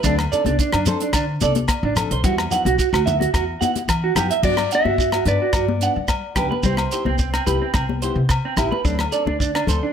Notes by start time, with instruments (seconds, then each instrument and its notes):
0.04 upright bass D2, nylon-string guitar F#3 C4 D4 A4, clean electric guitar D4, kick, closed hi-hat, shekere
0.19 cross-stick, low agogo
0.32 nylon-string guitar C4 D4 A4, clean electric guitar D5, closed hi-hat, shekere
0.45 upright bass C2, clean electric guitar D4, closed hi-hat, high conga, shekere
0.59 clean electric guitar D4, kick, closed hi-hat, shekere
0.73 upright bass F#2, clean electric guitar D4, cross-stick, low agogo
0.86 nylon-string guitar D4 A4, clean electric guitar C5, closed hi-hat, high conga, low conga, shekere
0.90 nylon-string guitar C4
1.00 clean electric guitar D4, closed hi-hat, shekere
1.13 upright bass D3, clean electric guitar D4, kick, cross-stick, closed hi-hat, low agogo, shekere
1.41 upright bass C2, nylon-string guitar C4 D4 A4, clean electric guitar D5, closed hi-hat, high conga, shekere
1.55 closed hi-hat, high conga, shekere
1.68 kick, cross-stick, closed hi-hat, low agogo, shekere
1.83 upright bass A1, clean electric guitar D4
1.96 nylon-string guitar C4 D4 A4, cross-stick, closed hi-hat, low conga, low agogo, shekere
2.11 upright bass B1, clean electric guitar C5, closed hi-hat
2.24 upright bass E2, nylon-string guitar G3 B3 E4 F#4, clean electric guitar F#4, kick, closed hi-hat, shekere
2.38 cross-stick, low agogo
2.51 nylon-string guitar B3 E4 F#4, clean electric guitar F#5, closed hi-hat, low conga, shekere
2.65 upright bass B1, clean electric guitar F#4, closed hi-hat, high conga, shekere
2.78 clean electric guitar F#4, kick, closed hi-hat, shekere
2.93 upright bass D2, clean electric guitar F#4, cross-stick, low agogo
3.06 nylon-string guitar B3 E4 F#4, clean electric guitar E5, closed hi-hat, high conga, low conga, shekere
3.20 clean electric guitar F#4, closed hi-hat, high conga, shekere
3.34 upright bass E2, clean electric guitar F#4, kick, cross-stick, closed hi-hat, low agogo, shekere
3.61 nylon-string guitar B3 E4 F#4, clean electric guitar F#5, closed hi-hat, high conga, shekere
3.76 closed hi-hat, high conga, shekere
3.88 upright bass E3, kick, cross-stick, closed hi-hat, low agogo, shekere
4.04 clean electric guitar F#4
4.15 upright bass F#2, nylon-string guitar B3 E4 F#4, clean electric guitar G4, cross-stick, closed hi-hat, low conga, low agogo, shekere
4.31 clean electric guitar E5, closed hi-hat, shekere
4.43 upright bass G2, nylon-string guitar F#3 B3 D4, clean electric guitar F#4 D5, kick, crash, shekere
4.57 cross-stick, low agogo
4.71 nylon-string guitar B3 D4, clean electric guitar E5 F#5, closed hi-hat, shekere
4.85 upright bass G2, clean electric guitar F#4, high conga
4.98 clean electric guitar F#4, kick, shekere
5.12 clean electric guitar F#4, cross-stick, low agogo
5.25 upright bass G2, nylon-string guitar B3 D4, clean electric guitar B4 D5, closed hi-hat, low conga, shekere
5.42 clean electric guitar F#4
5.53 upright bass G2, clean electric guitar F#4, kick, cross-stick, low agogo, shekere
5.68 high conga
5.81 nylon-string guitar B3 D4, clean electric guitar F#5, closed hi-hat, shekere
5.96 upright bass G3
6.08 kick, cross-stick, low agogo, shekere
6.35 upright bass C#2, nylon-string guitar B3 D4, clean electric guitar G4 B4, kick, cross-stick, closed hi-hat, low conga, low agogo, shekere
6.51 clean electric guitar B4, high conga
6.63 upright bass C2, nylon-string guitar G3 B3 E4 G4, clean electric guitar C4 C5, kick, shekere
6.77 cross-stick, low agogo
6.92 nylon-string guitar B3 E4 G4, clean electric guitar C5, closed hi-hat, shekere
7.05 upright bass C2, clean electric guitar C4, high conga
7.18 clean electric guitar C4, kick, shekere
7.33 clean electric guitar C4, cross-stick, low agogo
7.47 upright bass C2, nylon-string guitar B3 E4 G4, clean electric guitar B4, closed hi-hat, low conga, shekere
7.62 clean electric guitar C4
7.74 upright bass C2, clean electric guitar C4, kick, cross-stick, low agogo, shekere
7.89 high conga
8.02 nylon-string guitar B3 E4 G4, clean electric guitar C5, closed hi-hat, shekere
8.15 upright bass C3
8.29 kick, cross-stick, low agogo, shekere
8.45 clean electric guitar C4
8.57 upright bass A1, nylon-string guitar B3 E4 G4, clean electric guitar E4, kick, cross-stick, closed hi-hat, low conga, low agogo, shekere
8.72 clean electric guitar B4, high conga
8.84 upright bass D2, nylon-string guitar F#3 C4 D4 A4, clean electric guitar D4, kick, shekere
8.99 cross-stick, low agogo
9.12 nylon-string guitar C4 D4 A4, clean electric guitar D5, closed hi-hat, shekere
9.26 upright bass D2, clean electric guitar D4, high conga
9.40 clean electric guitar D4, kick, shekere
9.55 clean electric guitar D4, cross-stick, low agogo
9.67 upright bass D2, nylon-string guitar C4 A4, clean electric guitar C5, muted nylon-string guitar stroke, closed hi-hat, low conga, shekere
9.83 clean electric guitar D4